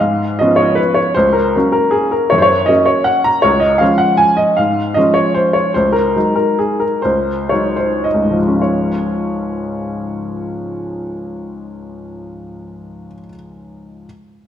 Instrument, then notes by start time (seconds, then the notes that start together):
upright piano
0.00 G#2 F5
0.39 F3 B3 C#4 D#5
0.56 C#5
0.75 B4
0.94 C#5
1.14 C#2 C5
1.33 A#4
1.55 F#3 A#3 C#4
1.72 A#4
1.91 G#4
2.11 A#4
2.30 F#2 C#5
2.38 C5
2.42 C#5
2.66 F#3 A#3 C#4 D#5
2.86 C#5
3.04 F#5
3.24 A#5
3.42 C#2 C#5
3.60 D#5
3.78 F3 G#3 C#4 F5
3.98 F#5
4.17 G#5
4.37 D#5
4.57 G#2 F5
4.94 F3 G#3 C#4 D#5
5.14 C#5
5.34 C5
5.53 C#5
5.74 C#2 C5
5.92 A#4
6.16 F#3 G#3 D#4
6.36 A#4
6.59 G#4
6.80 A#4
7.02 C#2 C5
7.49 F#3 G#3 D#4 C#5
7.76 C5
8.04 D#5
8.14 C#2
8.23 G#2
8.31 F3
8.39 G#3
8.48 C#4
8.56 F4
8.62 C#5